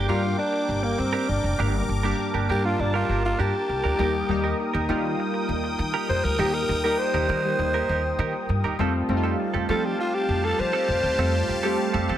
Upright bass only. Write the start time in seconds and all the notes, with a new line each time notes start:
0.09 G2
0.69 G1
0.99 G2
1.29 G1
1.44 F1
1.59 G1
1.89 G1
2.34 G1
2.49 G2
2.79 G1
3.09 G1
3.39 G2
3.69 C2
3.84 D2
3.99 D#2
4.29 D#2
4.74 D#2
4.89 D#3
5.49 D#2
5.79 D#3
6.09 F2
6.24 D2
6.39 D#2
6.69 D#2
7.14 D#2
7.29 D#3
7.59 D#2
7.89 D#2
8.19 D#3
8.49 G2
8.64 D#2
8.79 F2
9.09 F2
9.54 F2
9.69 F3
10.29 F2
10.59 F3
10.88 F2
11.03 D#2
11.18 F2
11.49 F2
11.94 F2
12.09 F3